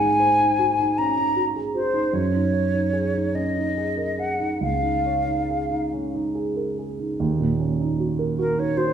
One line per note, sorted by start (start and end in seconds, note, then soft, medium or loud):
0.00 2.09 G#2 medium
0.00 0.32 D#4 soft
0.00 0.99 G#5 medium
0.20 0.52 C5 soft
0.40 0.71 D#4 soft
0.59 0.91 F#4 soft
0.79 1.10 D#4 soft
0.98 1.18 C#4 soft
0.98 1.44 A#5 medium
1.18 1.48 D#4 soft
1.36 1.67 F#4 soft
1.56 1.75 G#4 soft
1.74 2.05 F#4 soft
1.74 2.15 C5 medium
1.94 2.13 D#4 soft
2.13 4.58 F#2 soft
2.13 3.36 C#5 medium
2.34 2.65 D#4 soft
2.53 2.85 C#5 soft
2.74 3.06 D#4 soft
2.93 3.26 G#4 soft
3.14 3.48 D#4 soft
3.35 3.56 C#4 soft
3.35 4.20 D#5 medium
3.56 3.90 D#4 soft
3.77 4.11 G#4 soft
3.97 4.19 A#4 soft
4.18 4.53 G#4 soft
4.18 4.61 F#5 medium
4.40 4.62 D#4 soft
4.61 7.15 C#2 soft
4.61 5.90 F5 medium
4.82 5.18 D#4 soft
5.05 5.41 C#5 soft
5.27 5.62 D#4 soft
5.50 5.84 G#4 soft
5.71 6.05 D#4 soft
5.93 6.14 C#4 soft
6.14 6.48 D#4 soft
6.35 6.69 G#4 soft
6.56 6.78 A#4 soft
6.79 7.12 G#4 soft
6.99 7.20 D#4 soft
7.20 8.93 D#2 medium
7.40 7.71 A#2 soft
7.59 7.91 C#4 soft
7.80 8.11 D#4 soft
8.00 8.31 F#4 soft
8.19 8.50 A#4 soft
8.38 8.69 F#4 soft
8.38 8.60 A#4 medium
8.58 8.88 D#4 soft
8.58 8.78 C#5 medium
8.77 8.93 F#4 soft
8.77 8.93 C5 medium